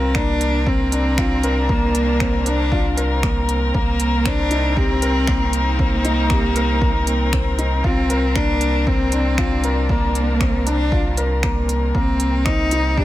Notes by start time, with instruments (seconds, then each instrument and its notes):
Already playing: sub bass C2, cello C4, string quartet C4 A#4, felt piano F4 A#4
0.15 felt piano A#3, cello D4, finger snap, kick
0.41 closed hi-hat
0.67 felt piano C4, cello C4, kick
0.73 string quartet D4
0.92 felt piano D4, closed hi-hat
1.18 felt piano F4, finger snap, kick
1.43 felt piano A#4, closed hi-hat
1.69 felt piano A#3, cello A#3, kick
1.95 closed hi-hat
2.20 felt piano C4, finger snap, kick
2.46 felt piano D4, cello D4, closed hi-hat
2.72 felt piano F4, kick
2.97 felt piano A#4, closed hi-hat
3.23 felt piano A#3, finger snap, kick
3.49 closed hi-hat
3.74 sub bass C2, felt piano A#3, cello A#3, kick
4.00 closed hi-hat
4.25 felt piano C4, cello D4, finger snap, kick
4.51 felt piano D#4, closed hi-hat
4.76 cello C4, felt piano G4, kick
5.02 felt piano A#4, closed hi-hat
5.22 string quartet D#4
5.27 felt piano A#3, finger snap, kick
5.53 cello A#3, closed hi-hat
5.79 felt piano C4, kick
6.05 felt piano D#4, closed hi-hat
6.30 felt piano G4, finger snap, kick
6.56 felt piano A#4, closed hi-hat
6.81 felt piano A#3, kick
7.07 closed hi-hat
7.33 felt piano C4, finger snap, kick
7.58 felt piano D#4, closed hi-hat
7.84 sub bass C2, cello C4, felt piano F4, kick
8.10 felt piano A#4, closed hi-hat
8.35 felt piano A#3, cello D4, finger snap, kick
8.61 closed hi-hat
8.83 felt piano C4, cello C4, string quartet D4, kick
9.12 felt piano D4, closed hi-hat
9.38 felt piano F4, finger snap, kick
9.64 felt piano A#4, closed hi-hat
9.89 felt piano A#3, cello A#3, kick
10.15 closed hi-hat
10.41 felt piano C4, finger snap, kick
10.67 felt piano D4, cello D4, closed hi-hat
10.92 felt piano F4, kick
11.17 felt piano A#4, closed hi-hat
11.43 felt piano A#3, finger snap, kick
11.69 closed hi-hat
11.94 sub bass C2, string quartet C3, felt piano A#3, cello C4, kick
12.20 closed hi-hat
12.45 felt piano C4, cello D#4, finger snap, kick
12.71 felt piano D#4, closed hi-hat
12.97 cello D4, felt piano G4, kick